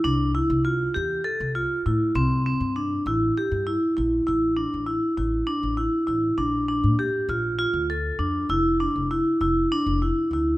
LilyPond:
<<
  \new Staff \with { instrumentName = "Vibraphone" } { \time 7/8 \key a \phrygian \tempo 4 = 99 d'8 e'8 f'8 g'8 a'8 f'8 e'8 | c'8 c'8 d'8 e'8 g'8 e'8 e'8 | e'8 d'8 e'8 e'8 d'8 e'8 e'8 | d'8 d'8 g'8 f'8 f'8 a'8 d'8 |
e'8 d'8 e'8 e'8 d'8 e'8 e'8 | }
  \new Staff \with { instrumentName = "Upright bass" } { \clef bass \time 7/8 \key a \phrygian c,8. c,8. e,8 r16 c,8 r16 a,8 | c,8. g,8. a,,8 r16 g,8 r16 bes,,8 | a,,8. a,,8 r16 a,,8 r16 a,,8 r16 a,,8 | bes,,8. bes,8 r16 bes,,8. d,8. f,8 |
f,,8. f,,8 r16 f,,8 r16 f,,8 r16 d,8 | }
>>